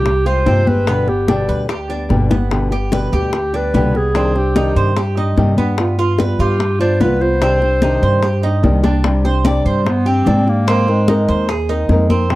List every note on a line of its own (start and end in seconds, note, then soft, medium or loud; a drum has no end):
0.00 0.43 C2 medium
0.00 0.25 G4 medium
0.00 0.28 G4 medium
0.05 muted nylon-string guitar stroke medium
0.05 high bongo medium
0.05 high conga soft
0.26 0.45 G#3 soft
0.26 0.46 C4 soft
0.26 0.46 F4 medium
0.26 0.46 G4 soft
0.26 0.70 C5 medium
0.26 high conga soft
0.46 1.43 G1 medium
0.46 0.66 C3 medium
0.46 0.66 F3 medium
0.46 0.66 G#3 medium
0.46 0.86 C4 medium
0.46 0.66 C4 medium
0.46 0.65 G4 medium
0.46 high bongo soft
0.46 low bongo medium
0.46 high conga medium
0.66 0.87 G#3 soft
0.66 0.87 C4 soft
0.66 0.86 G4 soft
0.66 1.10 B4 medium
0.66 high bongo soft
0.66 high conga medium
0.86 1.07 B2 medium
0.86 1.07 D3 medium
0.86 1.07 G3 medium
0.86 1.27 B3 medium
0.86 1.07 B3 medium
0.86 1.06 G4 medium
0.86 high bongo medium
0.86 high conga soft
1.07 1.27 G3 soft
1.07 1.28 B3 soft
1.07 1.27 G4 soft
1.07 1.70 G4 medium
1.07 high bongo soft
1.07 high conga soft
1.28 1.67 B2 medium
1.28 1.68 D3 medium
1.28 1.68 G3 medium
1.28 1.68 B3 medium
1.28 1.48 D4 medium
1.28 1.68 G4 medium
1.28 high bongo medium
1.28 high conga medium
1.48 2.06 D2 medium
1.48 1.69 B4 medium
1.48 high bongo soft
1.48 high conga soft
1.68 1.89 G4 medium
1.68 muted nylon-string guitar stroke medium
1.68 high bongo medium
1.68 high conga soft
1.89 2.09 G3 soft
1.89 2.10 B3 soft
1.89 2.30 D4 medium
1.89 2.09 G4 soft
1.89 high conga soft
2.09 3.06 G1 medium
2.09 2.29 B2 medium
2.09 2.30 D3 medium
2.09 2.30 G3 medium
2.09 2.30 B3 medium
2.09 2.29 G4 medium
2.09 high bongo medium
2.09 high conga medium
2.30 2.50 G3 soft
2.30 2.71 B3 medium
2.30 2.50 B3 soft
2.30 2.50 G4 soft
2.30 low bongo loud
2.30 high conga medium
2.50 2.70 B2 medium
2.50 2.71 D3 medium
2.50 2.71 G3 medium
2.50 2.71 B3 medium
2.50 2.69 G4 medium
2.50 high bongo medium
2.50 high conga soft
2.71 2.92 G3 soft
2.71 2.91 B3 soft
2.71 2.91 G4 soft
2.71 2.92 G4 medium
2.71 high bongo soft
2.71 high conga soft
2.92 3.32 B2 medium
2.92 3.32 D3 medium
2.92 3.32 G3 medium
2.92 3.33 B3 medium
2.92 3.33 G4 medium
2.92 3.12 B4 medium
2.92 high bongo medium
2.92 high conga medium
3.12 3.70 D2 medium
3.12 3.52 G4 medium
3.12 3.57 G4 medium
3.12 high bongo soft
3.12 high conga soft
3.33 muted nylon-string guitar stroke medium
3.33 high bongo medium
3.33 high conga soft
3.53 3.74 G3 soft
3.53 3.74 B3 soft
3.53 3.74 D4 medium
3.53 3.73 G4 soft
3.53 3.98 B4 loud
3.53 high conga soft
3.74 4.70 C2 medium
3.74 3.94 B2 medium
3.74 3.94 D3 medium
3.74 3.94 G3 medium
3.74 4.14 B3 medium
3.74 3.94 B3 medium
3.74 3.93 G4 medium
3.74 high bongo soft
3.74 low bongo medium
3.74 high conga medium
3.94 4.14 G3 soft
3.94 4.14 B3 soft
3.94 4.14 G4 soft
3.94 4.39 G#4 medium
3.94 high bongo soft
4.14 4.34 C3 medium
4.14 4.34 D#3 medium
4.14 4.35 G3 medium
4.14 4.55 C4 medium
4.14 4.35 D4 medium
4.14 4.33 G4 medium
4.14 high bongo medium
4.14 high conga soft
4.35 4.55 G3 soft
4.35 4.55 D4 soft
4.35 4.55 G4 soft
4.35 4.98 G4 medium
4.35 high bongo soft
4.35 high conga soft
4.55 4.95 C3 medium
4.55 4.95 D#3 medium
4.55 4.95 G3 medium
4.55 4.96 D4 medium
4.55 4.76 D#4 medium
4.55 4.96 G4 medium
4.55 high bongo medium
4.55 high conga medium
4.76 5.33 G2 medium
4.76 4.96 C5 medium
4.76 high bongo soft
4.76 high conga soft
4.96 5.16 G4 medium
4.96 muted nylon-string guitar stroke medium
4.96 high bongo medium
4.96 high conga soft
5.17 5.36 G3 soft
5.17 5.37 D4 soft
5.17 5.57 D#4 medium
5.17 5.36 G4 soft
5.17 high conga soft
5.36 6.33 G2 medium
5.36 5.56 C3 medium
5.36 5.57 D#3 medium
5.36 5.57 G3 medium
5.36 5.57 D4 medium
5.36 5.56 G4 medium
5.36 high bongo soft
5.36 low bongo medium
5.36 high conga medium
5.57 5.76 G3 soft
5.57 5.97 B3 medium
5.57 5.78 D4 soft
5.57 5.77 G4 soft
5.57 high bongo soft
5.57 high conga medium
5.77 5.97 G3 medium
5.77 5.98 B3 medium
5.77 5.97 F4 medium
5.77 high bongo medium
5.77 high conga soft
5.98 6.18 B3 soft
5.98 6.18 F4 soft
5.98 6.18 F4 medium
5.98 high bongo soft
5.98 high conga soft
6.18 6.58 G3 medium
6.18 6.58 B3 medium
6.18 6.59 F4 medium
6.18 6.39 B4 medium
6.18 high bongo medium
6.18 high conga medium
6.39 6.96 G2 medium
6.39 6.79 F4 medium
6.39 6.78 G4 medium
6.39 high bongo soft
6.39 high conga soft
6.59 muted nylon-string guitar stroke medium
6.59 high bongo medium
6.59 high conga soft
6.79 7.00 B3 soft
6.79 7.00 D4 medium
6.79 6.99 F4 soft
6.79 7.02 C5 medium
6.79 high conga soft
7.00 7.96 C2 medium
7.00 7.20 G3 medium
7.00 7.40 B3 medium
7.00 7.20 B3 medium
7.00 7.19 F4 medium
7.00 7.23 B4 medium
7.00 high bongo soft
7.00 low bongo medium
7.00 high conga medium
7.20 7.41 B3 soft
7.20 7.40 F4 soft
7.20 8.64 C5 medium
7.20 high bongo soft
7.41 7.61 C3 medium
7.41 7.61 D#3 medium
7.41 7.61 G3 medium
7.41 7.81 C4 medium
7.41 7.62 D4 medium
7.41 7.60 G4 medium
7.41 high bongo medium
7.41 high conga soft
7.62 7.81 G3 soft
7.62 7.82 D4 soft
7.62 high bongo soft
7.62 high conga soft
7.81 8.21 C3 medium
7.81 8.22 D#3 medium
7.81 8.22 G3 medium
7.81 8.22 D4 medium
7.81 8.02 D#4 medium
7.81 8.22 G4 medium
7.81 high bongo soft
7.81 high conga medium
8.03 8.60 G2 medium
8.03 8.22 C5 medium
8.03 high bongo soft
8.03 high conga soft
8.22 8.43 G4 medium
8.22 muted nylon-string guitar stroke medium
8.22 high bongo medium
8.22 high conga soft
8.43 8.63 G3 soft
8.43 8.63 D4 soft
8.43 8.83 D#4 medium
8.43 8.63 G4 soft
8.43 high conga soft
8.62 9.59 C2 medium
8.62 8.83 C3 medium
8.62 8.83 D#3 medium
8.62 8.83 G3 medium
8.62 8.83 D4 medium
8.62 8.82 G4 medium
8.62 high bongo soft
8.62 low bongo medium
8.62 high conga medium
8.83 9.03 G3 soft
8.83 9.04 D4 medium
8.83 9.04 D4 soft
8.83 9.03 G4 soft
8.83 high bongo medium
8.83 high conga medium
9.04 9.24 C3 medium
9.04 9.24 G3 medium
9.04 9.24 C4 medium
9.04 9.25 D4 medium
9.04 9.23 G4 medium
9.04 high bongo medium
9.04 high conga soft
9.24 9.44 C4 soft
9.24 9.45 D4 soft
9.24 9.44 G4 soft
9.24 9.45 C5 medium
9.24 high bongo soft
9.24 high conga soft
9.45 9.84 C3 medium
9.45 9.84 G3 medium
9.45 9.85 C4 medium
9.45 9.85 D4 medium
9.45 9.85 G4 medium
9.45 9.65 D5 medium
9.45 high bongo medium
9.45 high conga medium
9.65 10.23 G2 medium
9.65 9.89 G3 medium
9.65 10.05 C5 medium
9.65 high bongo soft
9.65 high conga soft
9.85 10.10 B3 medium
9.85 muted nylon-string guitar stroke medium
9.85 high bongo medium
9.85 high conga soft
10.06 10.26 C4 soft
10.06 10.51 C4 medium
10.06 10.26 D4 soft
10.06 10.26 G4 soft
10.06 10.26 G4 medium
10.06 high conga soft
10.26 11.22 G#2 medium
10.26 10.46 C3 medium
10.26 10.46 G3 medium
10.26 10.47 C4 medium
10.26 10.66 D4 medium
10.26 10.46 D4 medium
10.26 10.45 G4 medium
10.26 high bongo soft
10.26 low bongo medium
10.26 high conga medium
10.47 10.91 A#3 medium
10.47 10.66 C4 soft
10.47 10.67 D4 soft
10.47 10.66 G4 soft
10.47 high bongo soft
10.67 10.87 G#3 medium
10.67 10.87 C4 medium
10.67 11.07 C4 medium
10.67 10.87 D#4 medium
10.67 10.86 A#4 medium
10.67 high bongo medium
10.67 high conga soft
10.87 11.50 G#3 medium
10.87 11.07 C4 soft
10.87 11.08 D#4 soft
10.87 11.07 A#4 soft
10.87 high bongo soft
10.87 high conga soft
11.08 11.48 G#3 medium
11.08 11.48 C4 medium
11.08 11.28 D#4 medium
11.08 11.48 D#4 medium
11.08 11.49 A#4 medium
11.08 high bongo medium
11.08 high conga medium
11.28 11.86 D#2 medium
11.28 11.48 C5 medium
11.28 high bongo soft
11.28 high conga soft
11.49 11.69 G#4 medium
11.49 muted nylon-string guitar stroke medium
11.49 high bongo medium
11.49 high conga soft
11.69 11.89 C4 soft
11.69 12.09 D#4 medium
11.69 11.89 D#4 soft
11.69 11.89 A#4 soft
11.69 high conga soft
11.89 12.35 F2 medium
11.89 12.09 G#3 medium
11.89 12.10 C4 medium
11.89 12.09 D#4 medium
11.89 12.08 A#4 medium
11.89 high bongo soft
11.89 low bongo medium
11.89 high conga medium
12.09 12.35 C4 medium
12.09 12.30 C4 soft
12.09 12.30 D#4 soft
12.09 12.29 A#4 soft
12.09 high bongo soft
12.09 high conga medium
12.29 12.35 C3 medium
12.29 12.35 F3 medium
12.29 12.35 G#3 medium
12.29 12.35 C4 medium
12.29 12.35 G4 medium
12.29 high bongo medium
12.29 high conga soft